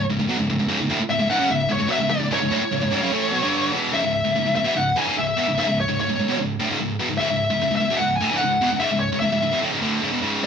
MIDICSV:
0, 0, Header, 1, 4, 480
1, 0, Start_track
1, 0, Tempo, 405680
1, 821, Time_signature, 4, 2, 24, 8
1, 12383, End_track
2, 0, Start_track
2, 0, Title_t, "Lead electric guitar"
2, 0, Program_c, 0, 29
2, 1296, Note_on_c, 0, 76, 94
2, 1521, Note_off_c, 0, 76, 0
2, 1537, Note_on_c, 0, 78, 101
2, 1761, Note_off_c, 0, 78, 0
2, 1783, Note_on_c, 0, 76, 101
2, 2028, Note_off_c, 0, 76, 0
2, 2038, Note_on_c, 0, 73, 94
2, 2262, Note_off_c, 0, 73, 0
2, 2266, Note_on_c, 0, 76, 97
2, 2486, Note_off_c, 0, 76, 0
2, 2490, Note_on_c, 0, 74, 83
2, 2742, Note_off_c, 0, 74, 0
2, 2760, Note_on_c, 0, 73, 73
2, 4382, Note_off_c, 0, 73, 0
2, 4661, Note_on_c, 0, 76, 86
2, 5377, Note_off_c, 0, 76, 0
2, 5391, Note_on_c, 0, 76, 89
2, 5633, Note_off_c, 0, 76, 0
2, 5643, Note_on_c, 0, 78, 97
2, 5856, Note_off_c, 0, 78, 0
2, 5891, Note_on_c, 0, 80, 100
2, 6123, Note_off_c, 0, 80, 0
2, 6129, Note_on_c, 0, 76, 95
2, 6609, Note_off_c, 0, 76, 0
2, 6622, Note_on_c, 0, 76, 81
2, 6827, Note_off_c, 0, 76, 0
2, 6866, Note_on_c, 0, 73, 83
2, 7069, Note_off_c, 0, 73, 0
2, 7103, Note_on_c, 0, 73, 75
2, 7531, Note_off_c, 0, 73, 0
2, 8491, Note_on_c, 0, 76, 81
2, 9163, Note_off_c, 0, 76, 0
2, 9177, Note_on_c, 0, 76, 88
2, 9428, Note_on_c, 0, 78, 102
2, 9448, Note_off_c, 0, 76, 0
2, 9655, Note_off_c, 0, 78, 0
2, 9660, Note_on_c, 0, 80, 99
2, 9898, Note_off_c, 0, 80, 0
2, 9903, Note_on_c, 0, 78, 97
2, 10406, Note_on_c, 0, 76, 89
2, 10418, Note_off_c, 0, 78, 0
2, 10644, Note_off_c, 0, 76, 0
2, 10649, Note_on_c, 0, 73, 82
2, 10879, Note_off_c, 0, 73, 0
2, 10884, Note_on_c, 0, 76, 74
2, 11339, Note_off_c, 0, 76, 0
2, 12383, End_track
3, 0, Start_track
3, 0, Title_t, "Distorted electric guitar"
3, 0, Program_c, 1, 30
3, 115, Note_on_c, 1, 37, 64
3, 117, Note_on_c, 1, 44, 78
3, 212, Note_off_c, 1, 37, 0
3, 217, Note_off_c, 1, 44, 0
3, 226, Note_on_c, 1, 37, 71
3, 232, Note_on_c, 1, 44, 72
3, 335, Note_off_c, 1, 37, 0
3, 340, Note_on_c, 1, 47, 81
3, 346, Note_off_c, 1, 44, 0
3, 351, Note_on_c, 1, 54, 92
3, 453, Note_off_c, 1, 47, 0
3, 457, Note_off_c, 1, 54, 0
3, 458, Note_on_c, 1, 37, 60
3, 462, Note_on_c, 1, 44, 73
3, 573, Note_off_c, 1, 44, 0
3, 579, Note_off_c, 1, 37, 0
3, 588, Note_on_c, 1, 44, 71
3, 595, Note_on_c, 1, 37, 65
3, 686, Note_off_c, 1, 37, 0
3, 692, Note_off_c, 1, 44, 0
3, 700, Note_on_c, 1, 37, 66
3, 707, Note_on_c, 1, 44, 75
3, 794, Note_off_c, 1, 37, 0
3, 795, Note_off_c, 1, 44, 0
3, 808, Note_on_c, 1, 37, 102
3, 809, Note_on_c, 1, 44, 117
3, 927, Note_off_c, 1, 37, 0
3, 927, Note_off_c, 1, 44, 0
3, 944, Note_on_c, 1, 37, 64
3, 953, Note_on_c, 1, 44, 70
3, 1055, Note_off_c, 1, 37, 0
3, 1060, Note_on_c, 1, 38, 88
3, 1064, Note_off_c, 1, 44, 0
3, 1068, Note_on_c, 1, 45, 93
3, 1173, Note_off_c, 1, 38, 0
3, 1177, Note_off_c, 1, 45, 0
3, 1301, Note_on_c, 1, 37, 72
3, 1308, Note_on_c, 1, 44, 80
3, 1397, Note_off_c, 1, 37, 0
3, 1408, Note_off_c, 1, 44, 0
3, 1411, Note_on_c, 1, 37, 64
3, 1422, Note_on_c, 1, 44, 67
3, 1521, Note_off_c, 1, 37, 0
3, 1523, Note_off_c, 1, 44, 0
3, 1535, Note_on_c, 1, 37, 99
3, 1538, Note_on_c, 1, 44, 99
3, 1638, Note_off_c, 1, 37, 0
3, 1643, Note_on_c, 1, 42, 81
3, 1647, Note_off_c, 1, 44, 0
3, 1652, Note_on_c, 1, 49, 103
3, 1764, Note_off_c, 1, 42, 0
3, 1764, Note_off_c, 1, 49, 0
3, 1768, Note_on_c, 1, 44, 69
3, 1772, Note_on_c, 1, 37, 65
3, 1966, Note_off_c, 1, 44, 0
3, 1968, Note_off_c, 1, 37, 0
3, 1996, Note_on_c, 1, 37, 63
3, 2003, Note_on_c, 1, 44, 72
3, 2098, Note_off_c, 1, 37, 0
3, 2102, Note_off_c, 1, 44, 0
3, 2112, Note_on_c, 1, 37, 64
3, 2116, Note_on_c, 1, 44, 63
3, 2216, Note_off_c, 1, 37, 0
3, 2221, Note_on_c, 1, 47, 85
3, 2224, Note_off_c, 1, 44, 0
3, 2229, Note_on_c, 1, 54, 102
3, 2347, Note_off_c, 1, 47, 0
3, 2352, Note_on_c, 1, 37, 60
3, 2354, Note_off_c, 1, 54, 0
3, 2358, Note_on_c, 1, 44, 72
3, 2457, Note_off_c, 1, 37, 0
3, 2464, Note_off_c, 1, 44, 0
3, 2471, Note_on_c, 1, 37, 64
3, 2478, Note_on_c, 1, 44, 69
3, 2581, Note_off_c, 1, 44, 0
3, 2585, Note_off_c, 1, 37, 0
3, 2595, Note_on_c, 1, 44, 68
3, 2599, Note_on_c, 1, 37, 64
3, 2716, Note_off_c, 1, 37, 0
3, 2716, Note_off_c, 1, 44, 0
3, 2730, Note_on_c, 1, 37, 95
3, 2730, Note_on_c, 1, 44, 117
3, 2824, Note_off_c, 1, 37, 0
3, 2827, Note_off_c, 1, 44, 0
3, 2838, Note_on_c, 1, 37, 64
3, 2842, Note_on_c, 1, 44, 67
3, 2957, Note_off_c, 1, 37, 0
3, 2962, Note_on_c, 1, 38, 93
3, 2963, Note_off_c, 1, 44, 0
3, 2967, Note_on_c, 1, 45, 98
3, 3083, Note_off_c, 1, 38, 0
3, 3086, Note_off_c, 1, 45, 0
3, 3218, Note_on_c, 1, 37, 64
3, 3225, Note_on_c, 1, 44, 74
3, 3322, Note_off_c, 1, 37, 0
3, 3326, Note_off_c, 1, 44, 0
3, 3336, Note_on_c, 1, 37, 65
3, 3340, Note_on_c, 1, 44, 67
3, 3435, Note_off_c, 1, 37, 0
3, 3445, Note_off_c, 1, 44, 0
3, 3449, Note_on_c, 1, 37, 82
3, 3459, Note_on_c, 1, 44, 95
3, 3567, Note_off_c, 1, 37, 0
3, 3572, Note_off_c, 1, 44, 0
3, 3583, Note_on_c, 1, 49, 105
3, 3586, Note_on_c, 1, 42, 81
3, 3694, Note_off_c, 1, 42, 0
3, 3694, Note_off_c, 1, 49, 0
3, 3699, Note_on_c, 1, 45, 98
3, 3706, Note_on_c, 1, 52, 96
3, 3706, Note_on_c, 1, 57, 105
3, 3924, Note_off_c, 1, 45, 0
3, 3928, Note_on_c, 1, 47, 98
3, 3931, Note_off_c, 1, 52, 0
3, 3935, Note_off_c, 1, 57, 0
3, 3936, Note_on_c, 1, 54, 100
3, 4047, Note_off_c, 1, 47, 0
3, 4050, Note_off_c, 1, 54, 0
3, 4059, Note_on_c, 1, 43, 92
3, 4065, Note_on_c, 1, 50, 100
3, 4069, Note_on_c, 1, 55, 98
3, 4404, Note_off_c, 1, 43, 0
3, 4409, Note_on_c, 1, 40, 86
3, 4411, Note_off_c, 1, 50, 0
3, 4416, Note_on_c, 1, 47, 98
3, 4417, Note_off_c, 1, 55, 0
3, 4429, Note_on_c, 1, 52, 98
3, 4645, Note_off_c, 1, 40, 0
3, 4648, Note_off_c, 1, 47, 0
3, 4649, Note_on_c, 1, 37, 96
3, 4652, Note_on_c, 1, 44, 109
3, 4657, Note_off_c, 1, 52, 0
3, 4750, Note_off_c, 1, 37, 0
3, 4755, Note_off_c, 1, 44, 0
3, 4765, Note_on_c, 1, 37, 62
3, 4769, Note_on_c, 1, 44, 69
3, 4964, Note_off_c, 1, 37, 0
3, 4966, Note_off_c, 1, 44, 0
3, 5018, Note_on_c, 1, 37, 66
3, 5024, Note_on_c, 1, 44, 67
3, 5139, Note_off_c, 1, 37, 0
3, 5142, Note_off_c, 1, 44, 0
3, 5151, Note_on_c, 1, 37, 56
3, 5155, Note_on_c, 1, 44, 75
3, 5258, Note_off_c, 1, 37, 0
3, 5265, Note_off_c, 1, 44, 0
3, 5272, Note_on_c, 1, 37, 63
3, 5279, Note_on_c, 1, 44, 65
3, 5370, Note_off_c, 1, 37, 0
3, 5376, Note_off_c, 1, 44, 0
3, 5384, Note_on_c, 1, 37, 61
3, 5390, Note_on_c, 1, 44, 68
3, 5488, Note_off_c, 1, 37, 0
3, 5492, Note_on_c, 1, 40, 84
3, 5495, Note_off_c, 1, 44, 0
3, 5500, Note_on_c, 1, 47, 86
3, 5609, Note_off_c, 1, 40, 0
3, 5613, Note_off_c, 1, 47, 0
3, 5626, Note_on_c, 1, 37, 69
3, 5629, Note_on_c, 1, 44, 70
3, 5815, Note_off_c, 1, 37, 0
3, 5817, Note_off_c, 1, 44, 0
3, 5869, Note_on_c, 1, 38, 93
3, 5872, Note_on_c, 1, 45, 103
3, 5978, Note_off_c, 1, 38, 0
3, 5979, Note_off_c, 1, 45, 0
3, 5996, Note_on_c, 1, 37, 78
3, 6004, Note_on_c, 1, 44, 98
3, 6101, Note_off_c, 1, 37, 0
3, 6105, Note_off_c, 1, 44, 0
3, 6117, Note_on_c, 1, 37, 58
3, 6130, Note_on_c, 1, 44, 68
3, 6301, Note_off_c, 1, 37, 0
3, 6308, Note_off_c, 1, 44, 0
3, 6352, Note_on_c, 1, 40, 89
3, 6362, Note_on_c, 1, 47, 99
3, 6460, Note_off_c, 1, 40, 0
3, 6465, Note_off_c, 1, 47, 0
3, 6482, Note_on_c, 1, 37, 64
3, 6484, Note_on_c, 1, 44, 70
3, 6586, Note_off_c, 1, 37, 0
3, 6588, Note_off_c, 1, 44, 0
3, 6600, Note_on_c, 1, 37, 95
3, 6603, Note_on_c, 1, 44, 107
3, 6704, Note_off_c, 1, 37, 0
3, 6705, Note_off_c, 1, 44, 0
3, 6720, Note_on_c, 1, 37, 62
3, 6722, Note_on_c, 1, 44, 76
3, 6903, Note_off_c, 1, 37, 0
3, 6904, Note_off_c, 1, 44, 0
3, 6959, Note_on_c, 1, 37, 69
3, 6967, Note_on_c, 1, 44, 66
3, 7071, Note_off_c, 1, 37, 0
3, 7075, Note_off_c, 1, 44, 0
3, 7092, Note_on_c, 1, 44, 71
3, 7093, Note_on_c, 1, 37, 69
3, 7193, Note_off_c, 1, 37, 0
3, 7193, Note_off_c, 1, 44, 0
3, 7207, Note_on_c, 1, 37, 60
3, 7207, Note_on_c, 1, 44, 70
3, 7315, Note_off_c, 1, 37, 0
3, 7315, Note_off_c, 1, 44, 0
3, 7327, Note_on_c, 1, 37, 59
3, 7327, Note_on_c, 1, 44, 69
3, 7424, Note_off_c, 1, 37, 0
3, 7429, Note_off_c, 1, 44, 0
3, 7429, Note_on_c, 1, 40, 89
3, 7434, Note_on_c, 1, 47, 92
3, 7538, Note_off_c, 1, 40, 0
3, 7541, Note_off_c, 1, 47, 0
3, 7548, Note_on_c, 1, 37, 68
3, 7551, Note_on_c, 1, 44, 70
3, 7738, Note_off_c, 1, 37, 0
3, 7739, Note_off_c, 1, 44, 0
3, 7804, Note_on_c, 1, 45, 103
3, 7805, Note_on_c, 1, 38, 85
3, 7906, Note_off_c, 1, 45, 0
3, 7907, Note_off_c, 1, 38, 0
3, 7920, Note_on_c, 1, 37, 90
3, 7929, Note_on_c, 1, 44, 93
3, 8018, Note_off_c, 1, 37, 0
3, 8029, Note_off_c, 1, 44, 0
3, 8032, Note_on_c, 1, 37, 56
3, 8045, Note_on_c, 1, 44, 62
3, 8220, Note_off_c, 1, 37, 0
3, 8226, Note_off_c, 1, 44, 0
3, 8274, Note_on_c, 1, 40, 92
3, 8281, Note_on_c, 1, 47, 96
3, 8381, Note_off_c, 1, 40, 0
3, 8385, Note_off_c, 1, 47, 0
3, 8389, Note_on_c, 1, 37, 63
3, 8398, Note_on_c, 1, 44, 75
3, 8501, Note_off_c, 1, 37, 0
3, 8511, Note_off_c, 1, 44, 0
3, 8515, Note_on_c, 1, 37, 95
3, 8524, Note_on_c, 1, 44, 105
3, 8622, Note_off_c, 1, 37, 0
3, 8624, Note_off_c, 1, 44, 0
3, 8636, Note_on_c, 1, 37, 59
3, 8638, Note_on_c, 1, 44, 73
3, 8822, Note_off_c, 1, 37, 0
3, 8823, Note_off_c, 1, 44, 0
3, 8874, Note_on_c, 1, 37, 72
3, 8886, Note_on_c, 1, 44, 72
3, 8989, Note_off_c, 1, 37, 0
3, 8995, Note_off_c, 1, 44, 0
3, 9010, Note_on_c, 1, 37, 66
3, 9023, Note_on_c, 1, 44, 77
3, 9107, Note_off_c, 1, 37, 0
3, 9108, Note_off_c, 1, 44, 0
3, 9122, Note_on_c, 1, 37, 60
3, 9122, Note_on_c, 1, 44, 76
3, 9219, Note_off_c, 1, 37, 0
3, 9225, Note_off_c, 1, 44, 0
3, 9233, Note_on_c, 1, 37, 64
3, 9239, Note_on_c, 1, 44, 65
3, 9346, Note_off_c, 1, 37, 0
3, 9351, Note_on_c, 1, 40, 87
3, 9352, Note_off_c, 1, 44, 0
3, 9358, Note_on_c, 1, 47, 99
3, 9460, Note_off_c, 1, 40, 0
3, 9464, Note_off_c, 1, 47, 0
3, 9476, Note_on_c, 1, 37, 62
3, 9477, Note_on_c, 1, 44, 76
3, 9662, Note_off_c, 1, 37, 0
3, 9663, Note_off_c, 1, 44, 0
3, 9708, Note_on_c, 1, 38, 85
3, 9714, Note_on_c, 1, 45, 110
3, 9819, Note_off_c, 1, 38, 0
3, 9822, Note_off_c, 1, 45, 0
3, 9830, Note_on_c, 1, 37, 90
3, 9832, Note_on_c, 1, 44, 99
3, 9940, Note_off_c, 1, 37, 0
3, 9941, Note_off_c, 1, 44, 0
3, 9961, Note_on_c, 1, 37, 64
3, 9963, Note_on_c, 1, 44, 65
3, 10144, Note_off_c, 1, 37, 0
3, 10145, Note_off_c, 1, 44, 0
3, 10189, Note_on_c, 1, 40, 91
3, 10193, Note_on_c, 1, 47, 105
3, 10299, Note_off_c, 1, 40, 0
3, 10301, Note_off_c, 1, 47, 0
3, 10306, Note_on_c, 1, 37, 66
3, 10313, Note_on_c, 1, 44, 75
3, 10392, Note_off_c, 1, 37, 0
3, 10401, Note_off_c, 1, 44, 0
3, 10406, Note_on_c, 1, 37, 93
3, 10415, Note_on_c, 1, 44, 108
3, 10528, Note_off_c, 1, 37, 0
3, 10532, Note_off_c, 1, 44, 0
3, 10543, Note_on_c, 1, 37, 70
3, 10550, Note_on_c, 1, 44, 69
3, 10735, Note_off_c, 1, 37, 0
3, 10739, Note_off_c, 1, 44, 0
3, 10794, Note_on_c, 1, 37, 70
3, 10806, Note_on_c, 1, 44, 65
3, 10899, Note_off_c, 1, 37, 0
3, 10903, Note_off_c, 1, 44, 0
3, 10913, Note_on_c, 1, 37, 71
3, 10917, Note_on_c, 1, 44, 72
3, 11018, Note_off_c, 1, 37, 0
3, 11021, Note_off_c, 1, 44, 0
3, 11032, Note_on_c, 1, 37, 64
3, 11036, Note_on_c, 1, 44, 76
3, 11141, Note_off_c, 1, 37, 0
3, 11143, Note_off_c, 1, 44, 0
3, 11156, Note_on_c, 1, 37, 61
3, 11157, Note_on_c, 1, 44, 67
3, 11259, Note_off_c, 1, 37, 0
3, 11264, Note_on_c, 1, 40, 76
3, 11265, Note_off_c, 1, 44, 0
3, 11269, Note_on_c, 1, 47, 93
3, 11376, Note_off_c, 1, 40, 0
3, 11378, Note_off_c, 1, 47, 0
3, 11381, Note_on_c, 1, 38, 90
3, 11383, Note_on_c, 1, 45, 103
3, 11495, Note_off_c, 1, 38, 0
3, 11496, Note_off_c, 1, 45, 0
3, 11504, Note_on_c, 1, 37, 96
3, 11508, Note_on_c, 1, 44, 92
3, 11614, Note_off_c, 1, 37, 0
3, 11614, Note_off_c, 1, 44, 0
3, 11618, Note_on_c, 1, 45, 95
3, 11619, Note_on_c, 1, 38, 96
3, 11626, Note_on_c, 1, 50, 102
3, 11853, Note_off_c, 1, 45, 0
3, 11854, Note_off_c, 1, 38, 0
3, 11857, Note_off_c, 1, 50, 0
3, 11860, Note_on_c, 1, 37, 85
3, 11864, Note_on_c, 1, 44, 95
3, 11973, Note_off_c, 1, 37, 0
3, 11976, Note_off_c, 1, 44, 0
3, 11977, Note_on_c, 1, 40, 85
3, 11981, Note_on_c, 1, 47, 100
3, 12090, Note_off_c, 1, 40, 0
3, 12091, Note_off_c, 1, 47, 0
3, 12095, Note_on_c, 1, 37, 93
3, 12096, Note_on_c, 1, 44, 90
3, 12101, Note_on_c, 1, 49, 100
3, 12326, Note_off_c, 1, 37, 0
3, 12332, Note_off_c, 1, 44, 0
3, 12334, Note_off_c, 1, 49, 0
3, 12341, Note_on_c, 1, 37, 89
3, 12383, Note_off_c, 1, 37, 0
3, 12383, End_track
4, 0, Start_track
4, 0, Title_t, "Muted distorted electric guitar strokes"
4, 1191, Note_on_c, 9, 29, 58
4, 1309, Note_off_c, 9, 29, 0
4, 3092, Note_on_c, 9, 29, 59
4, 3210, Note_off_c, 9, 29, 0
4, 12383, End_track
0, 0, End_of_file